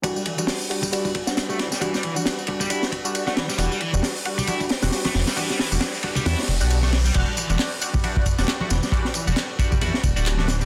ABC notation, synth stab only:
X:1
M:4/4
L:1/16
Q:"Swing 16ths" 1/4=135
K:Em
V:1 name="Synth stab"
[G,DF] z2 [G,DF]2 z [G,DF] z [G,DF]2 z [G,DF]2 [G,DF] z2 | [G,DF] z2 [G,DF]2 z [G,DF] z [G,DF]2 z [G,DF]2 [G,DF] z2 | [G,DF] z2 [G,DF]2 z [G,DF] z [G,DF]2 z [G,DF]2 [G,DF] z2 | [G,DF] z2 [G,DF]2 z [G,DF] z [G,DF]2 z [G,DF]2 [G,DF] z2 |
[G,DF] z2 [G,DF]2 z [G,DF] z [G,DF]2 z [G,DF]2 [G,DF] z2 | [G,DF] z2 [G,DF]2 z [G,DF] z [G,DF]2 z [G,DF]2 [G,DF] z2 |]